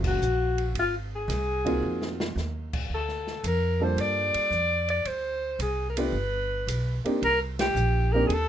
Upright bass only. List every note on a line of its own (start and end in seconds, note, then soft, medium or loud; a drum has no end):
0.00 0.18 F#1 medium
0.19 0.72 A#1 medium
0.74 1.27 G#1 medium
1.28 1.81 C2 loud
1.82 2.35 F2 medium
2.36 2.88 D#2 medium
2.90 3.42 D2 medium
3.44 3.96 F2 medium
3.97 4.32 G2 medium
4.34 muted upright bass stroke soft
4.50 5.04 F2 medium
5.05 5.58 D2 medium
5.59 6.12 C2 medium
6.12 6.65 G1 medium
6.67 7.02 B1 medium
7.05 muted upright bass stroke soft
7.22 7.74 C2 medium
7.75 8.27 A#1 loud
8.29 8.47 D#2 medium